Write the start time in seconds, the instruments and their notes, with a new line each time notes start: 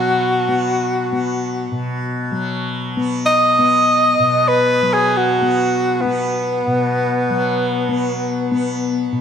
Already playing: tanpura B2 F#3 B3, tenor saxophone F#4
0.48 tanpura B3
1.12 tanpura B3
1.72 tanpura B2
2.31 tanpura F#3
2.97 tanpura B3
3.26 tenor saxophone D#5
3.59 tanpura B3
4.19 tanpura B2
4.48 tenor saxophone B4
4.82 tanpura F#3
4.94 tenor saxophone G#4
5.17 tenor saxophone F#4
5.42 tanpura B3
6.01 tenor saxophone B3, tanpura B3
6.67 tanpura B2
7.30 tanpura F#3
7.89 tanpura B3
8.51 tanpura B3
9.12 tanpura B2